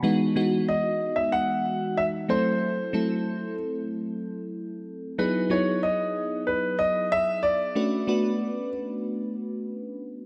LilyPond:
<<
  \new Staff \with { instrumentName = "Grand piano" } { \time 4/4 \key e \major \tempo 4 = 93 r4 dis''8. e''16 fis''4 e''8 c''8~ | c''4. r2 r8 | b'8 cis''8 dis''4 b'8 dis''8 e''8 d''8~ | d''4. r2 r8 | }
  \new Staff \with { instrumentName = "FM electric piano" } { \time 4/4 \key e \major <e gis b dis' fis'>8 <e gis b dis' fis'>4. r4. <fis a c' e' a'>8~ | <fis a c' e' a'>8 <fis a c' e' a'>4. r2 | <fis b dis' e' gis'>8 <fis b dis' e' gis'>4. r2 | <a cis' d' fis' b'>8 <a b d' fis' b'>4. r2 | }
>>